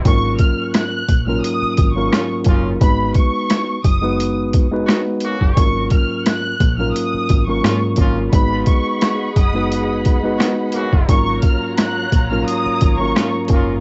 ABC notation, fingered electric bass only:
X:1
M:4/4
L:1/16
Q:"Swing 16ths" 1/4=87
K:F#
V:1 name="Fingered electric bass" clef=bass
G,,,2 z4 A,,,2 z2 G,,,2 z2 F,,,2 | G,,,2 z4 F,,,6 z3 F,,, | G,,,2 z4 A,,,2 z2 G,,,2 G,,2 G,,,2 | G,,,2 z4 F,,,6 z3 F,,, |
G,,,2 z4 A,,,2 z2 G,,,2 z2 F,,,2 |]